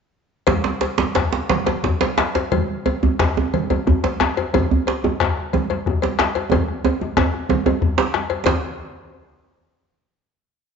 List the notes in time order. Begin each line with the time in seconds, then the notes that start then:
0.47 bombo low, cowbell, djembe slap, high conga, djembe bass, low conga
0.64 djembe slap
0.81 cowbell, djembe slap
0.98 djembe slap, high conga, djembe tone
1.15 bombo rim, bombo low, cowbell, djembe slap, djembe bass
1.33 bombo rim, djembe slap
1.49 cowbell, djembe slap, high conga, low conga
1.66 cowbell, djembe slap, high conga, djembe tone
1.84 bombo rim, bombo low, djembe slap, djembe bass
2.01 bombo rim, cowbell, djembe slap, high conga
2.18 bombo rim, djembe slap, high conga
2.35 cowbell, djembe slap, djembe tone
2.52 bombo low, cowbell, high conga, low conga, djembe bass
2.86 cowbell, djembe tone
3.03 high conga, djembe tone, djembe bass
3.19 bombo rim, bombo low, cowbell, djembe slap, djembe bass
3.36 bombo rim, djembe tone
3.54 cowbell, high conga, low conga
3.70 cowbell, djembe tone, high conga
3.87 bombo rim, bombo low, djembe bass
4.04 bombo rim, cowbell, djembe slap, high conga
4.20 bombo rim, djembe slap, djembe tone, high conga
4.37 cowbell, djembe tone
4.54 bombo low, cowbell, high conga, djembe tone, low conga, djembe bass
4.71 djembe bass
4.87 cowbell, djembe slap
5.04 high conga, djembe tone
5.20 bombo rim, bombo low, cowbell, djembe slap, djembe bass
5.37 bombo rim
5.53 cowbell, high conga, djembe tone, low conga
5.70 cowbell, high conga, djembe tone
5.86 bombo rim, bombo low, djembe bass
6.02 bombo rim, cowbell, djembe slap, high conga
6.19 bombo rim, djembe slap, high conga
6.35 cowbell, djembe tone
6.51 bombo rim, bombo low, cowbell, djembe slap, high conga, djembe tone, djembe bass, low conga
6.68 bombo rim
6.85 cowbell, djembe slap, djembe tone
7.01 high conga, djembe tone
7.17 bombo rim, bombo low, cowbell, djembe slap, djembe tone, djembe bass
7.34 bombo rim, djembe slap
7.49 bombo rim, cowbell, djembe slap, high conga, djembe tone, low conga
7.66 cowbell, djembe tone, high conga
7.82 bombo low, djembe slap, high conga, djembe bass
7.97 cowbell, djembe slap, high conga
8.14 bombo rim, djembe slap, high conga
8.30 cowbell, djembe tone
8.46 bombo low, cowbell, djembe slap, low conga, djembe bass